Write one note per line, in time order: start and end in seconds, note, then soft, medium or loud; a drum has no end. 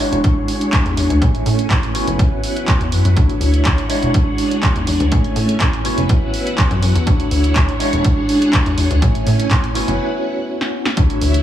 0.00 1.16 G#3 medium
0.00 1.17 D4 medium
0.00 1.20 D4 medium
0.00 1.17 E4 medium
0.00 1.17 F#4 medium
0.00 1.20 G#4 medium
0.00 1.19 C#5 medium
0.00 1.17 C#5 loud
0.00 1.18 F#5 medium
0.12 0.22 E1 medium
0.12 closed hi-hat soft
0.24 kick loud
0.24 closed hi-hat medium
0.48 open hi-hat loud
0.61 closed hi-hat soft
0.73 kick loud
0.73 clap loud
0.73 closed hi-hat medium
0.85 0.95 E2 loud
0.85 closed hi-hat soft
0.97 1.08 E2 medium
0.97 open hi-hat loud
1.10 1.20 D2 medium
1.10 closed hi-hat soft
1.21 1.32 A2 medium
1.21 1.90 A3 medium
1.21 1.94 A3 medium
1.21 1.90 C#4 medium
1.21 1.94 C#4 medium
1.21 1.90 E4 medium
1.21 1.90 G#4 medium
1.21 1.90 C#5 medium
1.21 1.94 G#5 medium
1.21 kick loud
1.21 closed hi-hat medium
1.35 closed hi-hat soft
1.46 1.67 A2 medium
1.46 open hi-hat loud
1.59 closed hi-hat soft
1.70 1.81 A2 medium
1.70 kick loud
1.70 clap loud
1.70 closed hi-hat medium
1.83 closed hi-hat soft
1.94 2.05 F#1 soft
1.94 3.11 B3 medium
1.94 3.12 C#4 medium
1.94 3.12 E4 medium
1.94 3.15 E4 medium
1.94 3.12 F#4 medium
1.94 3.16 B4 medium
1.94 3.12 C#5 medium
1.94 3.15 F#5 medium
1.94 open hi-hat loud
2.07 2.17 F#1 medium
2.07 closed hi-hat soft
2.19 kick loud
2.19 closed hi-hat medium
2.43 open hi-hat loud
2.56 closed hi-hat soft
2.68 kick loud
2.68 clap loud
2.68 closed hi-hat medium
2.81 2.93 E2 medium
2.81 closed hi-hat soft
2.92 3.03 F#2 loud
2.92 open hi-hat loud
3.05 3.15 F#2 medium
3.05 closed hi-hat soft
3.16 3.28 D2 medium
3.16 3.85 A3 medium
3.16 3.85 D4 medium
3.16 3.85 E4 medium
3.16 3.89 E4 medium
3.16 3.85 F#4 medium
3.16 3.88 C#5 medium
3.16 3.85 C#5 medium
3.16 5.10 F#5 medium
3.16 kick loud
3.16 closed hi-hat medium
3.29 closed hi-hat soft
3.41 3.62 D2 medium
3.41 open hi-hat loud
3.54 closed hi-hat soft
3.65 3.76 D2 medium
3.65 kick loud
3.65 clap loud
3.65 closed hi-hat medium
3.78 closed hi-hat soft
3.89 5.07 G#3 medium
3.89 5.07 D4 medium
3.89 5.10 D4 medium
3.89 5.07 E4 medium
3.89 5.07 F#4 medium
3.89 5.10 G#4 medium
3.89 5.10 C#5 medium
3.89 5.07 C#5 loud
3.89 open hi-hat loud
4.02 4.12 E1 medium
4.02 closed hi-hat soft
4.14 kick loud
4.14 closed hi-hat medium
4.38 open hi-hat loud
4.51 closed hi-hat soft
4.63 kick loud
4.63 clap loud
4.63 closed hi-hat medium
4.76 4.85 E2 loud
4.76 closed hi-hat soft
4.87 4.98 E2 medium
4.87 open hi-hat loud
5.00 5.10 D2 medium
5.00 closed hi-hat soft
5.11 5.23 A2 loud
5.11 5.80 A3 medium
5.11 5.84 A3 medium
5.11 5.80 C#4 medium
5.11 5.84 C#4 medium
5.11 5.80 E4 medium
5.11 5.81 G#4 medium
5.11 5.81 C#5 medium
5.11 5.84 G#5 medium
5.11 kick loud
5.11 closed hi-hat medium
5.24 closed hi-hat soft
5.36 5.57 A2 medium
5.36 open hi-hat loud
5.49 closed hi-hat medium
5.60 5.71 A2 medium
5.60 kick loud
5.60 clap loud
5.60 closed hi-hat medium
5.73 closed hi-hat soft
5.84 5.95 F#1 soft
5.84 7.02 B3 medium
5.84 7.02 C#4 medium
5.84 7.05 E4 medium
5.84 7.02 E4 medium
5.84 7.02 F#4 medium
5.84 7.05 B4 medium
5.84 7.03 C#5 loud
5.84 7.78 F#5 medium
5.84 open hi-hat loud
5.98 6.07 F#1 medium
5.98 closed hi-hat medium
6.09 kick loud
6.09 closed hi-hat medium
6.34 open hi-hat loud
6.47 closed hi-hat soft
6.58 kick loud
6.58 clap loud
6.58 closed hi-hat medium
6.71 6.81 F#2 loud
6.71 closed hi-hat soft
6.82 6.93 F#2 medium
6.82 open hi-hat loud
6.95 7.05 E2 medium
6.95 closed hi-hat medium
7.06 7.18 D2 medium
7.06 7.75 A3 medium
7.06 7.75 D4 medium
7.06 7.79 E4 medium
7.06 7.75 E4 medium
7.06 7.76 F#4 medium
7.06 9.00 C#5 medium
7.06 7.76 C#5 medium
7.06 kick loud
7.06 closed hi-hat medium
7.20 closed hi-hat soft
7.31 7.52 D2 medium
7.31 open hi-hat loud
7.44 closed hi-hat medium
7.56 7.67 D2 medium
7.56 kick loud
7.56 clap loud
7.56 closed hi-hat medium
7.69 closed hi-hat soft
7.79 8.97 G#3 medium
7.79 8.97 D4 medium
7.79 9.01 D4 medium
7.79 8.97 E4 medium
7.79 8.97 F#4 medium
7.79 9.01 G#4 medium
7.79 8.98 C#5 loud
7.79 9.01 F#5 medium
7.79 open hi-hat loud
7.93 8.03 E1 medium
7.93 closed hi-hat medium
8.04 kick loud
8.04 closed hi-hat medium
8.29 open hi-hat loud
8.42 closed hi-hat medium
8.53 kick loud
8.53 clap loud
8.53 closed hi-hat medium
8.66 8.76 E2 loud
8.66 closed hi-hat soft
8.78 8.89 E2 medium
8.78 open hi-hat loud
8.91 9.00 D2 medium
8.91 closed hi-hat medium
9.01 9.13 A2 medium
9.01 9.70 A3 medium
9.01 9.75 A3 medium
9.01 9.70 C#4 medium
9.01 9.74 C#4 medium
9.01 9.70 E4 medium
9.01 9.71 G#4 medium
9.01 9.71 C#5 medium
9.01 9.74 G#5 medium
9.01 kick loud
9.01 closed hi-hat medium
9.15 closed hi-hat soft
9.27 9.47 A2 medium
9.27 open hi-hat loud
9.40 closed hi-hat medium
9.51 9.62 A2 medium
9.51 kick loud
9.51 clap loud
9.51 closed hi-hat medium
9.64 closed hi-hat soft
9.74 9.86 F#1 soft
9.74 10.92 B3 medium
9.74 10.92 C#4 medium
9.74 10.92 E4 medium
9.74 10.00 E4 medium
9.74 10.93 F#4 medium
9.74 10.00 B4 medium
9.74 10.93 C#5 loud
9.74 10.00 F#5 medium
9.74 open hi-hat loud
9.88 9.99 F#1 medium
9.88 closed hi-hat medium
10.61 snare medium
10.85 snare loud
10.96 11.08 D2 loud
10.96 11.43 A3 medium
10.96 11.43 D4 medium
10.96 11.43 E4 medium
10.96 11.43 F#4 medium
10.96 11.43 C#5 medium
10.96 11.43 F#5 medium
10.96 kick loud
10.96 closed hi-hat medium
11.10 closed hi-hat soft
11.21 11.42 D2 medium
11.21 open hi-hat loud
11.34 closed hi-hat medium